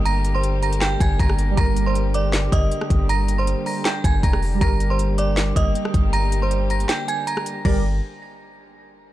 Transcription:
<<
  \new Staff \with { instrumentName = "Synth bell" } { \time 4/4 \key g \minor \tempo 4 = 158 <bes'' bes'''>8. <c'' c'''>8. <bes'' bes'''>8 <g'' g'''>8 <aes'' aes'''>8 <bes'' bes'''>4 | <bes'' bes'''>8. <c'' c'''>16 r8 <d'' d'''>4 <ees'' ees'''>4. | <bes'' bes'''>8. <c'' c'''>8. <bes'' bes'''>8 <g'' g'''>8 <aes'' aes'''>8 <bes'' bes'''>4 | <bes'' bes'''>8. <c'' c'''>16 r8 <d'' d'''>4 <ees'' ees'''>4. |
<bes'' bes'''>8. <c'' c'''>8. <bes'' bes'''>8 <g'' g'''>8 <aes'' aes'''>8 <bes'' bes'''>4 | bes'''8 r2. r8 | }
  \new Staff \with { instrumentName = "Synth keys" } { \time 4/4 \key g \minor <g g' bes'>1 | <g g' bes'>1~ | <g g' bes'>1 | <g g' bes'>1~ |
<g g' bes'>1 | <g g' bes' d''>8 r2. r8 | }
  \new Staff \with { instrumentName = "String section" } { \time 4/4 \key g \minor << { <g bes g'>1~ | <g bes g'>1~ | <g bes g'>1 | <g bes g'>1~ |
<g bes g'>1 | <d g bes g'>8 r2. r8 | } \\ { d1~ | d1~ | d1~ | d1~ |
d1 | r1 | } >> }
  \new Staff \with { instrumentName = "808-style bass" } { \clef bass \time 4/4 \key g \minor g,,2~ g,,8 g,,8 g,,4 | g,,2~ g,,8 g,,8 r8 g,,8~ | g,,4~ g,,16 r4 r16 g,,8 f,,4 | g,,2~ g,,8 g,,8 r8 g,,8~ |
g,,2 r2 | g,,4 r2. | }
  \new DrumStaff \with { instrumentName = "Drums" } \drummode { \time 4/4 hh8 hh8 hh8 hh16 hh16 <hc hh sn>8 <hh bd>8 <hh bd>16 ss16 hh8 | <hh bd>8 hh8 hh8 hh8 <hc hh sn>8 <hh bd>8 hh16 ss16 <hh bd>8 | hh8 hh8 hh8 hho8 <hc hh sn>8 <hh bd>8 <hh bd>16 ss16 hho8 | <hh bd>8 hh8 hh8 hh8 <hc hh sn>8 <hh bd>8 hh16 ss16 <hh bd>8 |
hh8 hh8 hh8 hh16 hh16 <hc hh sn>8 hh8 hh16 ss16 hh8 | <cymc bd>4 r4 r4 r4 | }
>>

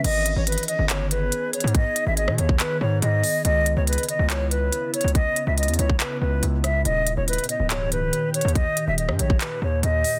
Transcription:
<<
  \new Staff \with { instrumentName = "Flute" } { \time 4/4 \key gis \minor \tempo 4 = 141 dis''8. cis''16 b'8 dis''8 cis''8 b'4 cis''8 | dis''8. e''16 dis''8 cis''8 b'8 cis''8 dis''4 | dis''8. cis''16 b'8 dis''8 cis''8 b'4 cis''8 | dis''8. e''16 dis''8 cis''8 b'8 b'4 e''8 |
dis''8. cis''16 b'8 dis''8 cis''8 b'4 cis''8 | dis''8. e''16 dis''8 cis''8 b'8 cis''8 dis''4 | }
  \new Staff \with { instrumentName = "Ambient pad" } { \time 4/4 \key gis \minor <dis b gis'>1~ | <dis b gis'>1 | <cis b e'>1~ | <cis b e'>1 |
<ais, dis g'>1~ | <ais, dis g'>1 | }
  \new Staff \with { instrumentName = "808-style bass" } { \clef bass \time 4/4 \key gis \minor gis,,8. gis,,8 r8 g,,4~ g,,16 r8. gis,16~ | gis,16 r8 gis,,8 b,16 dis,8 r8 gis,8 gis,8 r8 | cis,8. cis,8 r8 cis,4~ cis,16 r8. cis,16~ | cis,16 r8 cis,8 e,16 cis,8 r8 cis,8 cis,4 |
dis,,8. dis,,8 r8 cis,,4~ cis,,16 r8. dis,16~ | dis,16 r8 dis,,8 g,16 ais,,8 r8 dis,8 dis,8 r8 | }
  \new DrumStaff \with { instrumentName = "Drums" } \drummode { \time 4/4 <cymc hh>8 hh8 hh32 hh32 hh32 hh32 hh8 <hc hh>8 hh8 \tuplet 3/2 { hh16 r16 r16 hh16 hh16 hh16 } | <hh bd>8 hh8 hh16 ss16 hh16 bd16 <hc hh>4 hh8 hho8 | hh8 hh8 hh32 hh32 hh32 hh32 hh8 <hc hh>8 hh8 \tuplet 3/2 { hh16 r16 r16 hh16 hh16 hh16 } | <hh bd>8 hh8 hh32 hh32 hh32 hh32 hh16 bd16 <hc hh>4 hh8 <hh ss>8 |
hh8 hh8 hh32 hh32 hh32 hh32 hh8 <hc hh>8 hh8 \tuplet 3/2 { hh16 r16 r16 hh16 hh16 hh16 } | <hh bd>8 hh8 hh16 ss16 hh16 bd16 <hc hh>4 hh8 hho8 | }
>>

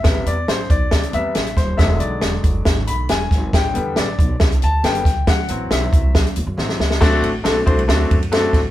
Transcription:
<<
  \new Staff \with { instrumentName = "Grand piano" } { \time 4/4 \key d \mixolydian \tempo 4 = 138 e''8 d''8 c''8 d''4 e''4 c''8 | e''8 d''4. r8 b''8 gis''4 | g''4 d''4 r8 a''8 g''4 | fis''4 e''4 r2 |
<a c' d' fis' a'>8 r8 <a c' d' fis' a'>8 <a c' d' fis' c''>8 <a c' d' fis' a'>8 r8 <a c' d' fis' a'>8 r8 | }
  \new Staff \with { instrumentName = "Grand piano" } { \clef bass \time 4/4 \key d \mixolydian <c g b>8 r2 <c g b>8 r4 | <d fis gis>1 | r8 <d g b>8 r2 <d g b>8 r8 | r8 <e fis c'>4. r4 <e fis c'>8 r8 |
r1 | }
  \new Staff \with { instrumentName = "Upright bass" } { \clef bass \time 4/4 \key d \mixolydian a,,8 e,8 a,,8 b,,8 c,8 e,8 a,,8 ees,,8 | e,,8 b,,8 e,,8 fis,,8 gis,,8 b,,8 e,,8 gis,,8 | a,,8 e,8 a,,8 b,,8 c,8 d,8 fis,,8 cis,8 | d,8 a,,8 b,,8 c,8. r16 d,16 fis,16 a,,8 cis,8 |
d,8 a,,8 b,,8 c,8 d,8 fis,4 a,,8 | }
  \new DrumStaff \with { instrumentName = "Drums" } \drummode { \time 4/4 <hh bd sn>8 hh8 <hh sn>8 <hh bd>8 <hh bd sn>16 hh16 hh8 <hh sn>16 hh16 <hh bd sn>8 | <hh bd sn>8 hh8 <hh sn>8 <hh bd>8 <hh bd sn>8 hh8 <hh sn>8 <hh bd sn>8 | <hh bd sn>8 hh8 <hh sn>8 <hh bd>8 <hh bd sn>16 hh16 hh8 <hh sn>16 hh16 <hh bd sn>8 | <hh bd sn>8 hh8 <hh sn>8 <hh bd>8 <hh bd sn>16 hh16 hh8 sn16 sn16 sn16 sn16 |
<cymc bd sn>8 cymr8 <cymr sn>8 <bd cymr>16 cymr16 <cymr sn>8 <bd cymr>16 cymr16 <cymr sn>8 <bd cymr sn>8 | }
>>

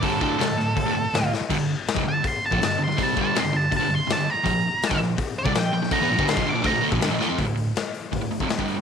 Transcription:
<<
  \new Staff \with { instrumentName = "Lead electric guitar" } { \time 4/4 \key d \minor \tempo 4 = 163 a'8 a'2. r8 | r4. a''8 c'''8 a''8 a''8 c'''8 | a''8 a''8 c'''8 a''8 a''8 c'''8 a''8 bes''8~ | bes''4. r4 d''8 g''4 |
bes''4 c'''8 d'''8 bes''8 r4. | r1 | }
  \new Staff \with { instrumentName = "Overdriven electric guitar" } { \clef bass \time 4/4 \key d \minor <g, d g>8 <d, a, d>8 <c g>16 <d, a,>16 <d, a,>8 <d, a,>16 <d, a,>16 <d, a,>16 r16 <d, a,>16 <d, a,>16 r8 | <g, d>16 <g, d>8 r8 <f, c>16 <g, d>8 r8. <bes, f>16 <g, d>8 <g, d>16 <g, d>16 | <c g c'>8 <g, d g>8 <f, c>16 <g, d>16 <g, d>8 <g, d>16 <g, d>16 <g, d>16 r16 <g, d>16 <g, d>16 r8 | <bes, f>16 <bes, f>8 r8 <g, d>16 <bes, f>8 r8. <c g>16 <bes, f>8 <bes, f>16 <bes, f>16 |
<d a>16 <e b>16 <bes, f>16 <g, d g>8 <bes, f>16 <g, d>16 <bes, f>16 <d a>16 <bes, f>16 <d a>16 <bes, f>16 <g, d>16 <bes, f>16 <d a>16 <f c'>16 | <d, a,>16 <d, a,>16 <d, a,>8 r4 <d, a,>16 <d, a,>16 <d, a,>16 <f, c>16 <d, a,>16 <g, d g>8 <d, a,>16 | }
  \new DrumStaff \with { instrumentName = "Drums" } \drummode { \time 4/4 <hho bd>8 bd8 <hho sn>8 sn8 <hho bd>4 <hho sn>8 sn8 | <cymc hho bd>4 <hho sn>16 bd8. <hho bd>8. bd16 <hho sn>8. sn16 | <hho bd>8 bd8 <hho sn>4 <hho bd>4 <hho sn>4 | <hho bd>4 <hho sn>16 bd16 sn8 <hho bd>8. bd16 <hho sn>8. sn16 |
<hho bd>8. bd16 <hho sn>16 bd8. <hho bd>8. bd16 <hho sn>8 sn8 | <hho bd>8 hho8 <hho sn>8 hho8 <hho bd>8 hho16 bd16 <hho sn>16 bd16 hho8 | }
>>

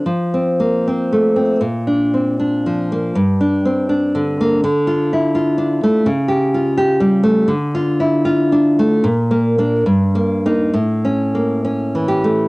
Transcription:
\new Staff \with { instrumentName = "Nylon-string guitar" } { \time 2/4 \key d \minor \tempo 4 = 79 << { r2 | r2 | r2 | r2 |
r2 | r2 | r2 | r4. g'8 | } \\ { \tuplet 3/2 { f8 c'8 bes8 c'8 a8 c'8 } | \tuplet 3/2 { bes,8 d'8 c'8 d'8 f8 bes8 } | \tuplet 3/2 { g,8 d'8 c'8 d'8 d8 bes8 } | \tuplet 3/2 { d8 f'8 e'8 f'8 d'8 a8 } |
\tuplet 3/2 { cis8 g'8 f'8 g'8 g8 a8 } | \tuplet 3/2 { d8 f'8 e'8 f'8 d'8 a8 } | \tuplet 3/2 { bes,8 bes8 <bes d'>8 g,8 bes8 <bes ees'>8 } | \tuplet 3/2 { a,8 cis'8 bes8 cis'8 e8 a8 } | } >> }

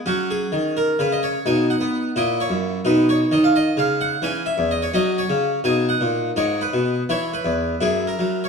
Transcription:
<<
  \new Staff \with { instrumentName = "Harpsichord" } { \time 6/8 \key b \lydian \tempo 4. = 85 << { fis'8 gis'4 ais'8 b'16 dis''16 cis''8 | gis''8 fis''4 dis''8 cis''4 | b'8 cis''8 dis''16 eis''16 dis''8 eis''8 fis''8 | \key fis \mixolydian gis''8 e''8 dis''16 cis''16 dis''8 cis''4 |
gis''8 fis''4 cis''8 b'4 | cis''8 b'4 gis'8 ais'8. cis''16 | } \\ { cis'2. | dis'4. e'4. | dis'2. | cis'4. cis'4. |
dis'4. dis'4. | e'4. e'4. | } >> }
  \new Staff \with { instrumentName = "Harpsichord" } { \clef bass \time 6/8 \key b \lydian fis4 dis4 cis4 | b,8. b8. ais,8. fis,8. | b,4 dis4 cis4 | \key fis \mixolydian e8. e,8. fis8. cis8. |
b,8. ais,8. gis,8. b,8. | e8. e,8. fis,8. fis8. | }
>>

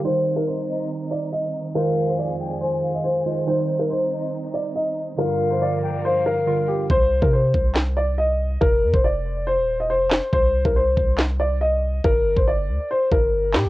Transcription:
<<
  \new Staff \with { instrumentName = "Flute" } { \time 4/4 \key c \minor \tempo 4 = 140 r4. ees''8 r2 | f''4. g''8 aes''8 f''4 ees''8 | r4. ees''8 r2 | f''4. g''8 f''2 |
r1 | r1 | r1 | r1 | }
  \new Staff \with { instrumentName = "Grand piano" } { \time 4/4 \key c \minor c''8. bes'16 c''4 r8 d''8 ees''4 | bes'8. c''16 d''4 c''8. ees''16 c''4 | c''8. bes'16 c''4 r8 d''8 ees''4 | bes'8. c''16 d''4 c''8 bes'4 g'8 |
c''8. bes'16 c''4 r8 d''8 ees''4 | bes'8. c''16 d''4 c''8. ees''16 c''4 | c''8. bes'16 c''4 r8 d''8 ees''4 | bes'8. c''16 d''4 c''8 bes'4 g'8 | }
  \new Staff \with { instrumentName = "Synth keys" } { \time 4/4 \key c \minor <ees g ees' c''>1 | <ees aes f' c''>2.~ <ees aes f' c''>8 <ees aes f' c''>8 | <ees g ees' c''>1 | <d g f' bes'>2. <d g f' bes'>4 |
r1 | r1 | r1 | r1 | }
  \new Staff \with { instrumentName = "String section" } { \time 4/4 \key c \minor <ees c' ees'>1 | <f, aes'>1 | <c' ees'>1 | <g, f bes>1 |
r1 | r1 | r1 | r1 | }
  \new Staff \with { instrumentName = "808-style bass" } { \clef bass \time 4/4 \key c \minor r1 | r1 | r1 | r1 |
c,8. c8. c,2~ c,8 | f,,8 f,16 f,,4. ees,,8. f,,8. r16 | c,8. c,8. c,2~ c,8 | g,,8. g,,8. d,16 r8. g,,4 bes,16 g,,16 | }
  \new DrumStaff \with { instrumentName = "Drums" } \drummode { \time 4/4 r4 r4 r4 r4 | r4 r4 r4 r4 | r4 r4 r4 r4 | r4 r4 r4 r4 |
bd8. bd16 r8 bd8 <hc sn>4 r4 | bd8. bd16 r4 r4 r8 <hc sn>8 | bd8. bd16 r8 bd8 <hc sn>4 r4 | bd8. bd16 r4 r8 bd8 r8 <hc sn>8 | }
>>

